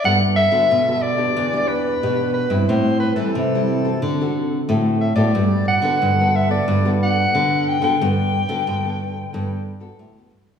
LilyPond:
<<
  \new Staff \with { instrumentName = "Soprano saxophone" } { \time 4/4 \key g \major \tempo 4 = 90 fis''8 e''4 d''4 b'4 b'8 | c''8 b'16 a'2 r8. e''16 d''16~ | d''8 fis''4 e''16 d''8. fis''4 g''16 g''16~ | g''2. r4 | }
  \new Staff \with { instrumentName = "Nylon-string guitar" } { \time 4/4 \key g \major << { <b fis' a'>8 r16 <b fis' a'>8 <b fis' a'>8 <b d' g'>8 <b d' g'>8. <b d' g'>8. <g c' e'>16~ | <g c' e'>8. <g c' e'>8 <g c' e'>8 <c' fis' a'>8 <c' fis' a'>8. <c' fis' a'>8 r16 <b fis' a'>16~ | <b fis' a'>8. <b fis' a'>8 <b fis' a'>8 <b fis' a'>8 <b fis' a'>8. <b fis' a'>8. <b fis' a'>16 | <b a'>8 r16 <b fis' a'>8 <b a'>8. <b a'>8 r16 <b fis' a'>8 <b fis' a'>8. | } \\ { g4 d4 e4 b,4 | a,4 e4 d4 a,4 | g4 d4 g4 d4 | g4 d4 g4 d4 | } >> }
  \new Staff \with { instrumentName = "Nylon-string guitar" } { \clef bass \time 4/4 \key g \major g,8. d16 b,4 e,4 b,8. g,16 | a,8. e16 c4 d4 a,8. a,16 | g,8. d16 g,4 g,4 d8. d16 | g,8. d16 g,4 g,4 a,8 g,8 | }
>>